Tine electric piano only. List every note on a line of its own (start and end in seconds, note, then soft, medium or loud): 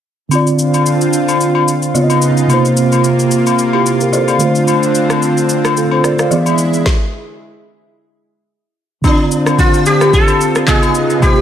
0.29 1.90 D3 medium
0.29 1.92 C4 medium
0.33 1.93 F4 medium
0.33 1.94 D5 medium
1.94 2.49 C#3 medium
1.94 2.50 B3 medium
1.94 2.50 F4 medium
1.94 2.03 C#5 medium
2.04 2.54 D#5 medium
2.47 4.35 C3 medium
2.47 4.37 A#3 medium
2.51 3.57 F4 medium
2.51 3.58 C5 medium
3.74 4.00 E4 medium
3.74 4.00 G4 medium
4.02 4.13 G4 medium
4.02 4.13 A#4 medium
4.14 4.28 A4 medium
4.14 4.28 C5 medium
4.29 4.55 D5 medium
4.29 4.55 F5 medium
4.38 6.26 D3 medium
4.38 6.27 A3 medium
4.42 5.75 F4 medium
4.42 5.76 C5 medium
5.78 5.92 F4 medium
5.78 5.91 A4 medium
5.93 6.04 A4 medium
5.93 6.04 C5 medium
6.05 6.19 D5 medium
6.20 6.32 D5 medium
6.20 6.45 F5 medium
6.31 6.85 E3 medium
6.31 6.86 B3 medium
6.31 6.87 G#4 medium
6.31 6.87 D5 medium
9.02 10.63 D3 medium
9.02 10.64 C4 medium
9.06 10.65 F4 medium
9.06 10.66 D5 medium
10.67 11.22 C#3 medium
10.67 11.22 B3 medium
10.67 11.23 F4 medium
10.67 11.23 D#5 medium
11.20 11.41 C3 medium
11.20 11.41 A#3 medium
11.26 11.41 C5 medium